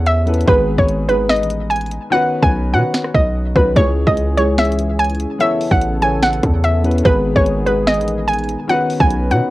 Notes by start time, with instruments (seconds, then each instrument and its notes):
Already playing: 808-style bass E2, grand piano E3 B3 C#4 A4 C#5
0.06 synth pluck E5, closed hi-hat
0.25 grand piano E3 B3 C#4 A4 B4, closed hi-hat
0.34 closed hi-hat
0.40 closed hi-hat
0.46 808-style bass G#1, grand piano D#3 G#3 B3 G#4 B4, synth pluck B4, kick, closed hi-hat
0.78 808-style bass G#1, synth pluck C#5, kick
0.88 closed hi-hat
1.08 grand piano D#3 G#3 B3 G#4 B4, synth pluck B4, closed hi-hat
1.29 synth pluck D#5, finger snap, snare, closed hi-hat
1.36 808-style bass A1, closed hi-hat
1.43 closed hi-hat
1.50 closed hi-hat
1.70 synth pluck G#5, closed hi-hat
1.76 closed hi-hat
1.81 closed hi-hat
1.86 closed hi-hat
1.91 closed hi-hat
2.10 grand piano D#3 B3 C#4 F#4 B4, synth pluck F#5
2.42 808-style bass B1, synth pluck G#5, kick
2.72 808-style bass B2, grand piano D#3 B3 C#4 F#4 B4, synth pluck F#5
2.94 finger snap, snare
3.04 cross-stick
3.14 808-style bass B1, synth pluck D#5, kick
3.55 808-style bass B1, grand piano D#3 B3 C#4 F#4 B4, synth pluck B4, kick
3.75 808-style bass C#2, grand piano E3 G#3 C#4 G#4 C#5, analog synth pad E3 C#4 G#4, synth pluck C#5, kick, closed hi-hat
4.07 808-style bass C#2, synth pluck D#5, kick
4.17 closed hi-hat
4.37 grand piano E3 G#3 C#4 G#4 C#5, synth pluck C#5, closed hi-hat
4.58 synth pluck E5, finger snap, snare, closed hi-hat
4.65 closed hi-hat
4.72 closed hi-hat
4.79 closed hi-hat
4.99 synth pluck G#5, closed hi-hat
5.05 closed hi-hat
5.10 closed hi-hat
5.15 closed hi-hat
5.20 closed hi-hat
5.38 analog synth pad C#3 B3 A4, grand piano E3 B3 C#4 A4 C#5, synth pluck E5, closed hi-hat
5.61 open hi-hat
5.71 808-style bass A1, synth pluck F#5, kick
5.82 closed hi-hat
6.00 grand piano E3 B3 C#4 A4 C#5, synth pluck G#5, closed hi-hat
6.23 synth pluck F#5, finger snap, snare, closed hi-hat
6.33 closed hi-hat
6.43 808-style bass E2, kick, closed hi-hat
6.64 synth pluck E5, closed hi-hat
6.83 grand piano E3 B3 C#4 A4 B4, closed hi-hat
6.91 closed hi-hat
6.98 closed hi-hat
7.03 808-style bass G#1, grand piano D#3 G#3 B3 G#4 B4, analog synth pad D#3 G#4, synth pluck B4, kick, closed hi-hat
7.36 808-style bass G#1, synth pluck C#5, kick
7.46 closed hi-hat
7.66 grand piano D#3 G#3 B3 G#4 B4, synth pluck B4, closed hi-hat
7.87 synth pluck D#5, finger snap, snare, closed hi-hat
7.94 808-style bass A1, closed hi-hat
8.01 closed hi-hat
8.08 closed hi-hat
8.28 synth pluck G#5, closed hi-hat
8.33 closed hi-hat
8.39 closed hi-hat
8.44 closed hi-hat
8.49 closed hi-hat
8.68 grand piano D#3 B3 C#4 F#4 B4, analog synth pad D#3 C#4 B4, synth pluck F#5, closed hi-hat
8.90 open hi-hat
9.00 808-style bass B1, synth pluck G#5, kick
9.10 closed hi-hat
9.30 808-style bass B2, grand piano D#3 B3 C#4 F#4 B4, synth pluck F#5, closed hi-hat